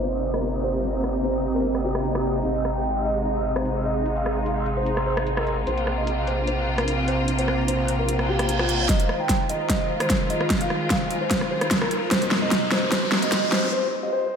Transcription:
Already playing: wobble bass G1, string section C3 A#3 D#4, ambient pad C4 F4 G4 C5 D#5
0.03 grand piano C5, closed hi-hat
0.34 grand piano A#4, cross-stick, closed hi-hat
0.43 closed hi-hat
0.64 grand piano C5, closed hi-hat
0.84 closed hi-hat
0.94 grand piano C5, closed hi-hat
1.04 cross-stick
1.24 grand piano C5, closed hi-hat
1.44 closed hi-hat
1.55 grand piano A#4
1.64 closed hi-hat
1.75 cross-stick
1.84 grand piano G4
1.95 cross-stick, closed hi-hat
2.05 closed hi-hat
2.15 grand piano G4, cross-stick
2.25 closed hi-hat
2.45 wobble bass G#1, string section G#3, ambient pad G#4, grand piano D#5, closed hi-hat
2.55 closed hi-hat
2.65 cross-stick
2.70 ambient pad A#5
2.75 grand piano G5, ambient pad C6
2.85 closed hi-hat
3.05 grand piano D#5, closed hi-hat
3.25 grand piano D#5, closed hi-hat
3.56 grand piano C5, cross-stick, closed hi-hat
3.66 closed hi-hat
3.86 grand piano D#5, closed hi-hat
4.06 closed hi-hat
4.16 grand piano F5, closed hi-hat
4.26 cross-stick
4.46 grand piano F5, closed hi-hat
4.66 closed hi-hat
4.77 grand piano C5
4.86 closed hi-hat
4.97 cross-stick
5.07 grand piano C5
5.17 cross-stick, closed hi-hat
5.27 closed hi-hat
5.37 grand piano A#4, cross-stick
5.47 closed hi-hat
5.67 wobble bass A#1, string section C3 A#3 F4, grand piano C5, ambient pad C5, closed hi-hat
5.78 closed hi-hat
5.87 cross-stick
5.98 grand piano D#5
6.03 ambient pad F5
6.07 closed hi-hat
6.27 grand piano C5, closed hi-hat
6.47 grand piano C5, closed hi-hat
6.78 grand piano A#4, cross-stick, closed hi-hat
6.88 closed hi-hat
7.08 grand piano C5, closed hi-hat
7.28 closed hi-hat
7.39 grand piano C5, closed hi-hat
7.48 cross-stick
7.68 grand piano C5, closed hi-hat
7.88 closed hi-hat
7.99 grand piano A#4
8.09 closed hi-hat, reverse cymbal
8.19 cross-stick
8.29 grand piano G4
8.39 cross-stick, closed hi-hat
8.49 closed hi-hat
8.59 grand piano F4, cross-stick
8.69 closed hi-hat
8.89 string section D#3 G#3 F4, ambient pad F4, grand piano D#5, kick, snare, closed hi-hat, riser
9.00 closed hi-hat
9.09 cross-stick
9.20 grand piano G5
9.29 kick, snare, closed hi-hat
9.49 grand piano D#5, closed hi-hat
9.70 grand piano D#5, kick, snare, closed hi-hat
10.00 grand piano C5, ambient pad G#5, cross-stick, closed hi-hat
10.10 kick, snare, closed hi-hat
10.30 grand piano D#5, closed hi-hat
10.41 cross-stick
10.50 kick, snare, closed hi-hat
10.61 grand piano F5, closed hi-hat
10.70 cross-stick
10.90 grand piano F5, kick, snare, closed hi-hat
11.11 closed hi-hat
11.21 grand piano C5
11.31 kick, snare, closed hi-hat
11.41 cross-stick
11.51 grand piano C5
11.61 cross-stick, closed hi-hat
11.71 kick, snare, closed hi-hat
11.81 grand piano A#4, cross-stick
11.91 closed hi-hat
12.11 string section G2 C3 A#3 D#4, ambient pad G3, grand piano C5, kick, snare, closed hi-hat
12.22 closed hi-hat
12.31 ambient pad G4, snare
12.42 ambient pad C4, grand piano D#5
12.51 kick, snare, closed hi-hat
12.72 grand piano C5, snare, closed hi-hat
12.92 grand piano C5, kick, snare, closed hi-hat
13.12 snare
13.22 grand piano D#5, closed hi-hat
13.32 kick, snare, closed hi-hat
13.52 grand piano C5, snare, closed hi-hat
13.72 grand piano C5
14.03 grand piano D#5
14.13 grand piano C5

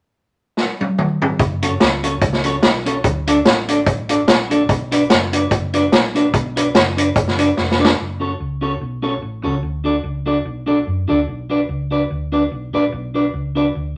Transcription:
0.57 snare
0.81 high tom
0.98 mid tom
1.22 floor tom
1.39 fingered electric bass F#1, kick, closed hi-hat
1.62 clean electric guitar C#4 F#4 A4 C#5, closed hi-hat
1.80 fingered electric bass C#2, muted clean electric guitar stroke, snare, closed hi-hat
2.03 clean electric guitar C#4 F#4 A4 C#5, closed hi-hat
2.21 fingered electric bass C#2, kick, closed hi-hat
2.33 snare
2.44 clean electric guitar C#4 F#4 A4 C#5, closed hi-hat
2.63 fingered electric bass B1, snare, closed hi-hat
2.86 clean electric guitar C#4 F#4 A4 C#5, closed hi-hat
3.04 fingered electric bass D2, kick, closed hi-hat
3.27 clean electric guitar D4 F#4 A4 D5, closed hi-hat
3.45 fingered electric bass A1, muted clean electric guitar stroke, snare, closed hi-hat
3.68 clean electric guitar D4 F#4 A4 D5, closed hi-hat
3.86 fingered electric bass A1, kick, closed hi-hat
4.09 clean electric guitar D4 F#4 A4 D5, closed hi-hat
4.28 fingered electric bass A#1, snare, closed hi-hat
4.50 clean electric guitar D4 F#4 A4 D5, closed hi-hat
4.69 fingered electric bass B1, kick, closed hi-hat
4.92 clean electric guitar D4 F#4 B4 D5, closed hi-hat
5.10 fingered electric bass F#1, snare, closed hi-hat
5.33 clean electric guitar D4 F#4 B4 D5, closed hi-hat
5.51 fingered electric bass F#1, kick, closed hi-hat
5.73 clean electric guitar D4 F#4 B4 D5, closed hi-hat
5.92 fingered electric bass A#1, snare, closed hi-hat
6.15 clean electric guitar D4 F#4 B4 D5, closed hi-hat
6.34 fingered electric bass B1, kick, closed hi-hat
6.56 clean electric guitar D4 F#4 B4 D5, closed hi-hat
6.74 fingered electric bass F#1, muted clean electric guitar stroke, snare, closed hi-hat
6.97 clean electric guitar D4 F#4 B4 D5, closed hi-hat
7.16 fingered electric bass F#1, kick, closed hi-hat
7.28 snare
7.38 clean electric guitar D4 F#4 B4 D5, closed hi-hat
7.57 fingered electric bass F1, snare
7.71 snare
7.79 clean electric guitar D4 F#4 B4 D5
7.85 snare
7.99 fingered electric bass F#1
8.20 clean electric guitar C#4 F#4 A4 C#5
8.40 fingered electric bass C#2
8.61 clean electric guitar C#4 F#4 A4 C#5
8.81 fingered electric bass B1
9.02 clean electric guitar C#4 F#4 A4 C#5
9.22 fingered electric bass A1
9.43 fingered electric bass C#2, clean electric guitar C#4 F#4 A4 C#5
9.63 fingered electric bass D2
9.84 clean electric guitar D4 F#4 A4 D5
10.04 fingered electric bass C#2
10.26 clean electric guitar D4 F#4 A4 D5
10.45 fingered electric bass B1
10.66 clean electric guitar D4 F#4 A4 D5
10.87 fingered electric bass F#2
11.08 fingered electric bass D2, clean electric guitar D4 F#4 A4 D5
11.28 fingered electric bass B1
11.50 clean electric guitar D4 F#4 B4 D5
11.69 fingered electric bass C#2
11.91 clean electric guitar D4 F#4 B4 D5
12.10 fingered electric bass D2
12.32 clean electric guitar D4 F#4 B4 D5
12.51 fingered electric bass B1
12.73 fingered electric bass A#1, clean electric guitar D4 F#4 B4 D5
12.92 fingered electric bass B1
13.14 clean electric guitar D4 F#4 B4 D5
13.34 fingered electric bass C#2
13.55 clean electric guitar D4 F#4 B4 D5
13.75 fingered electric bass D2

